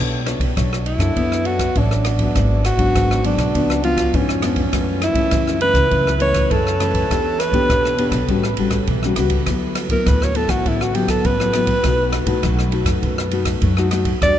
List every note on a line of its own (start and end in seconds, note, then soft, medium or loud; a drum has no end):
0.00 0.36 B1 medium
0.00 0.54 B3 soft
0.00 0.24 D4 medium
0.00 0.25 A4 medium
0.00 0.25 C#5 medium
0.26 0.44 D4 medium
0.26 0.44 A4 soft
0.26 0.44 C#5 medium
0.26 cross-stick medium
0.26 ride soft
0.39 0.53 B1 medium
0.39 kick medium
0.39 ride soft
0.56 0.95 B1 medium
0.56 1.13 F#3 medium
0.56 0.85 D4 medium
0.56 0.85 A4 medium
0.56 0.85 C#5 medium
0.56 kick medium
0.56 cross-stick medium
0.56 ride soft
0.73 cross-stick medium
0.86 1.47 E4 medium
0.86 ride soft
0.98 1.12 F#2 medium
0.98 1.41 D4 medium
0.98 1.41 A4 medium
0.98 1.41 C#5 medium
0.98 kick medium
0.98 cross-stick medium
0.98 ride soft
1.16 1.67 F#2 medium
1.16 1.73 B3 medium
1.16 kick medium
1.16 ride soft
1.32 cross-stick medium
1.45 1.64 D4 medium
1.45 1.79 F#4 loud
1.45 1.64 A4 medium
1.45 1.64 C#5 medium
1.45 ride soft
1.59 kick medium
1.59 cross-stick medium
1.59 ride soft
1.75 2.27 A1 medium
1.75 2.18 F#3 medium
1.75 2.04 D4 medium
1.75 2.65 D4 medium
1.75 2.04 A4 medium
1.75 2.04 C#5 medium
1.75 kick medium
1.75 ride soft
1.91 cross-stick medium
2.05 cross-stick medium
2.05 ride soft
2.19 2.60 F#3 medium
2.19 2.60 B3 medium
2.19 2.60 D4 medium
2.19 kick medium
2.19 ride soft
2.35 2.73 G#1 medium
2.35 2.92 G#2 soft
2.35 kick medium
2.35 cross-stick medium
2.35 ride soft
2.65 3.25 F#4 medium
2.65 cross-stick medium
2.65 ride medium
2.77 2.91 G#1 medium
2.77 3.19 F#3 medium
2.77 3.19 B3 medium
2.77 3.19 D4 medium
2.77 kick medium
2.77 ride soft
2.94 3.33 G#1 medium
2.94 3.51 G#2 medium
2.94 kick medium
2.94 cross-stick medium
2.94 ride medium
3.11 cross-stick medium
3.23 3.51 F#3 medium
3.23 3.52 B3 medium
3.23 3.52 D4 medium
3.23 3.81 D4 medium
3.23 ride medium
3.36 3.50 B1 medium
3.36 kick medium
3.36 cross-stick medium
3.36 ride soft
3.54 4.05 C#2 medium
3.54 4.11 C#3 medium
3.54 3.79 F3 medium
3.54 3.80 B3 medium
3.54 3.80 D4 medium
3.54 kick medium
3.54 ride soft
3.70 cross-stick medium
3.84 4.22 F3 medium
3.84 4.23 B3 medium
3.84 4.23 D4 medium
3.84 4.17 F4 medium
3.84 ride soft
3.97 kick medium
3.97 cross-stick medium
3.97 ride medium
4.14 4.64 F2 medium
4.14 4.71 G#2 medium
4.14 5.03 C#4 medium
4.14 kick medium
4.14 ride soft
4.29 cross-stick medium
4.42 4.61 F3 medium
4.42 4.61 B3 medium
4.42 4.61 D4 medium
4.42 cross-stick medium
4.42 ride medium
4.56 kick medium
4.56 ride medium
4.73 5.11 F#2 medium
4.73 5.30 F#2 medium
4.73 5.13 E3 medium
4.73 5.14 A3 soft
4.73 5.14 C#4 medium
4.73 kick medium
4.73 cross-stick medium
4.73 ride medium
5.02 5.61 E4 medium
5.02 cross-stick medium
5.02 ride soft
5.14 5.28 F#2 medium
5.14 5.57 E3 medium
5.14 5.57 A3 medium
5.14 5.57 C#4 medium
5.14 kick medium
5.14 ride medium
5.31 5.70 F#2 medium
5.31 5.89 C#3 medium
5.31 kick medium
5.31 cross-stick medium
5.31 ride medium
5.47 cross-stick medium
5.61 6.16 E3 medium
5.61 6.17 A3 medium
5.61 6.17 C#4 medium
5.61 6.17 B4 medium
5.61 ride medium
5.73 5.87 C#2 loud
5.73 kick medium
5.73 cross-stick medium
5.73 ride soft
5.91 6.42 C#2 loud
5.91 6.48 F#2 medium
5.91 kick medium
5.91 ride soft
6.07 cross-stick medium
6.20 6.59 E3 medium
6.20 6.59 A3 medium
6.20 6.60 C#4 medium
6.20 6.53 C#5 loud
6.20 ride soft
6.34 kick medium
6.34 cross-stick medium
6.34 ride soft
6.51 7.02 F#2 loud
6.51 7.07 C#3 medium
6.51 7.41 A4 medium
6.51 kick medium
6.51 ride soft
6.67 cross-stick medium
6.80 7.05 E3 medium
6.80 7.06 A3 medium
6.80 7.06 C#4 medium
6.80 cross-stick medium
6.80 ride medium
6.94 kick medium
6.94 ride soft
7.10 7.48 E2 medium
7.10 7.67 E3 soft
7.10 7.38 B3 soft
7.10 7.38 D4 soft
7.10 7.39 G4 medium
7.10 kick medium
7.10 cross-stick medium
7.10 ride soft
7.40 8.29 B4 medium
7.40 cross-stick medium
7.40 ride medium
7.51 7.66 E2 medium
7.51 7.94 B3 medium
7.51 7.94 D4 medium
7.51 7.94 G4 medium
7.51 kick medium
7.51 ride soft
7.70 8.08 E2 medium
7.70 8.26 B2 medium
7.70 kick loud
7.70 cross-stick medium
7.70 ride soft
7.85 cross-stick medium
7.98 8.18 B3 medium
7.98 8.19 D4 medium
7.98 8.19 G4 medium
7.98 ride medium
8.11 8.25 B1 medium
8.11 kick medium
8.11 cross-stick medium
8.11 ride soft
8.28 8.54 A1 medium
8.28 8.86 A2 medium
8.28 8.47 G3 medium
8.28 8.47 C#4 soft
8.28 8.47 F#4 medium
8.28 kick medium
8.28 ride soft
8.44 cross-stick medium
8.57 8.85 A1 medium
8.57 8.86 G3 medium
8.57 8.86 C#4 medium
8.57 8.87 F#4 medium
8.57 ride medium
8.71 kick medium
8.71 cross-stick medium
8.71 ride soft
8.87 9.15 B1 medium
8.87 9.45 E3 medium
8.87 kick medium
8.87 ride soft
9.03 9.14 G3 medium
9.03 9.14 C#4 medium
9.03 9.14 F#4 medium
9.03 cross-stick medium
9.16 9.44 C#2 medium
9.16 9.43 G3 medium
9.16 9.43 C#4 medium
9.16 9.43 F#4 medium
9.16 cross-stick medium
9.16 ride medium
9.30 kick medium
9.30 ride medium
9.46 9.85 D2 medium
9.46 10.04 D3 medium
9.46 9.87 F#3 soft
9.46 9.88 B3 soft
9.46 9.88 E4 medium
9.46 kick medium
9.46 cross-stick medium
9.46 ride medium
9.75 cross-stick medium
9.75 ride medium
9.88 10.03 D2 medium
9.88 10.31 F#3 medium
9.88 10.31 B3 medium
9.88 10.31 E4 medium
9.88 10.09 A#4 medium
9.88 kick medium
9.88 ride medium
10.06 10.45 D2 medium
10.06 10.63 A2 medium
10.06 10.25 B4 medium
10.06 kick medium
10.06 cross-stick medium
10.06 ride medium
10.22 10.38 C#5 medium
10.22 cross-stick medium
10.35 10.91 F#3 medium
10.35 10.91 B3 medium
10.35 10.91 E4 medium
10.35 10.51 A4 medium
10.35 ride medium
10.47 10.62 A1 medium
10.47 10.69 F#4 medium
10.47 kick medium
10.47 cross-stick medium
10.47 ride soft
10.66 11.16 A1 medium
10.66 11.22 D3 medium
10.66 10.84 E4 medium
10.66 kick medium
10.66 ride soft
10.81 10.97 F#4 medium
10.81 cross-stick medium
10.94 11.35 F#3 medium
10.94 11.35 B3 medium
10.94 11.35 E4 medium
10.94 11.11 G4 medium
10.94 ride medium
11.08 11.28 A4 medium
11.08 kick medium
11.08 cross-stick medium
11.08 ride medium
11.25 11.76 A1 medium
11.25 11.82 A2 medium
11.25 12.44 B4 medium
11.25 kick medium
11.25 ride soft
11.40 11.50 F#3 medium
11.40 11.51 B3 medium
11.40 11.51 E4 medium
11.40 cross-stick medium
11.53 11.72 F#3 medium
11.53 11.72 B3 medium
11.53 11.73 E4 medium
11.53 cross-stick medium
11.53 ride soft
11.67 kick medium
11.67 ride medium
11.84 12.22 B1 medium
11.84 12.41 B2 medium
11.84 12.24 A3 soft
11.84 12.25 D#4 soft
11.84 12.25 F#4 medium
11.84 kick medium
11.84 cross-stick medium
11.84 ride soft
12.13 cross-stick medium
12.13 ride soft
12.25 12.39 B1 medium
12.25 12.68 A3 medium
12.25 12.68 D#4 medium
12.25 12.68 F#4 medium
12.25 kick medium
12.25 ride medium
12.43 12.82 B1 medium
12.43 13.00 F#3 medium
12.43 kick medium
12.43 cross-stick medium
12.43 ride medium
12.59 cross-stick medium
12.72 13.28 A3 medium
12.72 13.28 D#4 soft
12.72 13.28 F#4 medium
12.72 ride soft
12.85 12.99 F#2 medium
12.85 kick medium
12.85 cross-stick medium
12.85 ride soft
13.03 13.54 F#2 loud
13.03 13.59 B2 medium
13.03 kick medium
13.03 ride soft
13.18 cross-stick medium
13.31 13.72 A3 medium
13.31 13.72 D#4 medium
13.31 13.73 F#4 medium
13.31 ride medium
13.45 kick medium
13.45 cross-stick medium
13.45 ride medium
13.62 14.13 F#2 medium
13.62 14.19 F#3 medium
13.62 kick medium
13.62 ride medium
13.77 13.88 A3 medium
13.77 13.88 D#4 medium
13.77 13.88 F#4 medium
13.77 cross-stick medium
13.91 14.10 A3 medium
13.91 14.10 D#4 medium
13.91 14.10 F#4 medium
13.91 cross-stick medium
13.91 ride medium
14.05 kick medium
14.05 ride medium
14.22 14.39 E2 medium
14.22 14.39 E3 soft
14.22 14.39 G3 medium
14.22 14.39 D4 medium
14.22 14.39 F#4 medium
14.22 14.39 D5 loud
14.22 kick medium
14.22 cross-stick medium
14.22 ride medium